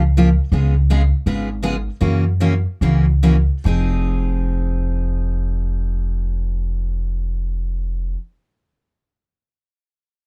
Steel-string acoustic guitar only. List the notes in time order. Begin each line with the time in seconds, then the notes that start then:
0.17 C#3 F3 A#3 F4 G4
0.52 C#3 G#3 B3 F4 G#4
0.90 C#3 G#3 B3 F4 G#4
1.26 C#3 G#3 B3 F4 G#4
1.63 C#3 G#3 B3 F4 G#4
2.01 C#3 E3 A#3 C#4 F#4
2.40 C#3 E3 A#3 C#4 F#4
2.82 C#3 E3 A#3 C#4 F#4
3.23 C#3 E3 A#3 C#4 F#4
3.64 F3 C4 D#4 G#4